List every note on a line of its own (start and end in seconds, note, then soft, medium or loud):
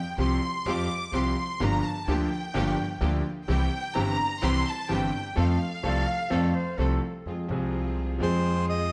0.00 0.16 G5 medium
0.18 0.38 C2 medium
0.18 0.39 C2 medium
0.18 0.39 C3 medium
0.18 0.38 F3 medium
0.18 0.38 G3 medium
0.18 0.39 C4 medium
0.18 0.39 F4 medium
0.18 0.39 G4 medium
0.18 0.67 C6 medium
0.66 0.86 F2 medium
0.66 0.86 F3 medium
0.66 0.86 G3 medium
0.66 0.86 C4 medium
0.66 0.86 F4 medium
0.66 0.86 G4 medium
0.66 0.87 G4 medium
0.66 1.15 D6 medium
1.12 1.32 C2 medium
1.12 1.33 C2 medium
1.12 1.33 C3 medium
1.12 1.33 F3 medium
1.12 1.33 G3 medium
1.12 1.33 C4 medium
1.12 1.33 F4 medium
1.12 1.33 G4 medium
1.17 1.62 C6 medium
1.60 1.80 G1 medium
1.60 1.80 G2 medium
1.60 1.80 F3 medium
1.60 1.80 A#3 medium
1.60 1.80 D4 medium
1.60 1.80 F4 medium
1.60 1.80 G4 medium
1.60 1.85 A#5 medium
1.86 2.08 A5 medium
2.07 2.27 D2 medium
2.07 2.27 D3 medium
2.07 2.27 F3 medium
2.07 2.27 A#3 medium
2.07 2.27 D4 medium
2.07 2.27 F4 medium
2.07 2.27 G4 medium
2.07 2.28 G4 medium
2.07 3.26 G5 medium
2.54 2.74 G1 medium
2.54 2.74 G1 loud
2.54 2.74 G2 medium
2.54 2.74 F3 medium
2.54 2.74 A#3 medium
2.54 2.74 D4 medium
2.54 2.74 F4 medium
2.54 2.74 G4 medium
2.54 2.74 G4 loud
3.01 3.21 D2 medium
3.01 3.21 D3 medium
3.01 3.20 F3 medium
3.01 3.21 A#3 medium
3.01 3.21 D4 medium
3.01 3.21 F4 medium
3.01 3.21 G4 medium
3.48 3.68 C2 loud
3.48 3.68 C2 medium
3.48 3.68 C3 medium
3.48 3.68 E3 medium
3.48 3.68 G3 medium
3.48 3.68 C4 medium
3.48 3.68 E4 medium
3.48 3.68 G4 medium
3.48 3.92 G5 medium
3.94 4.15 G1 medium
3.94 4.15 G2 medium
3.94 4.15 E3 medium
3.94 4.15 G3 medium
3.94 4.15 C4 medium
3.94 4.15 E4 medium
3.94 4.15 G4 medium
3.94 4.42 A#5 loud
4.42 4.62 C2 medium
4.42 4.62 C3 loud
4.42 4.62 E3 medium
4.42 4.62 G3 medium
4.42 4.62 C4 medium
4.42 4.62 E4 medium
4.42 4.62 G4 loud
4.42 4.62 G4 medium
4.42 4.66 C6 loud
4.66 4.89 A5 loud
4.89 5.09 G1 medium
4.89 5.09 G2 medium
4.89 5.09 E3 medium
4.89 5.09 G3 medium
4.89 5.09 C4 medium
4.89 5.09 E4 medium
4.89 5.09 G4 medium
4.89 5.37 G5 medium
5.36 5.56 F2 medium
5.36 5.56 F3 medium
5.36 5.56 A3 medium
5.36 5.56 C4 medium
5.36 5.56 F4 medium
5.36 5.56 A4 medium
5.36 6.75 F5 medium
5.83 6.03 C2 medium
5.83 6.03 C3 medium
5.83 6.03 F3 medium
5.83 6.03 A3 medium
5.83 6.03 C4 medium
5.83 6.03 F4 medium
5.83 6.03 A4 medium
5.83 6.08 D5 medium
6.07 6.32 F5 medium
6.30 6.50 F2 medium
6.30 6.51 F2 medium
6.30 6.50 F3 medium
6.30 6.50 A3 medium
6.30 6.50 C4 medium
6.30 6.51 F4 medium
6.30 6.50 A4 medium
6.30 6.51 A4 medium
6.30 6.55 D5 medium
6.54 6.79 C5 medium
6.77 6.98 C2 medium
6.77 6.98 C3 medium
6.77 6.98 F3 medium
6.77 6.98 A3 medium
6.77 6.98 C4 medium
6.77 6.98 F4 medium
6.77 7.25 A4 medium
6.77 6.98 A4 medium
7.26 7.46 F2 medium
7.26 7.46 F2 soft
7.26 7.46 F3 soft
7.26 7.46 G#3 soft
7.26 7.46 C4 soft
7.26 7.46 F4 soft
7.26 7.46 G#4 soft
7.48 8.17 C2 medium
7.48 8.18 C2 medium
7.48 8.17 C3 medium
7.48 8.16 F3 medium
7.48 8.17 G#3 medium
7.48 8.17 C4 medium
7.48 8.18 C4 medium
7.48 8.17 F4 medium
7.48 8.18 G#4 medium
8.18 8.92 F2 medium
8.18 8.20 F3 medium
8.18 8.92 F3 medium
8.18 8.92 G#3 medium
8.18 8.92 C4 medium
8.18 8.92 F4 medium
8.18 8.92 G#4 medium
8.22 8.92 G#4 medium
8.22 8.66 C5 medium
8.69 8.92 D#5 medium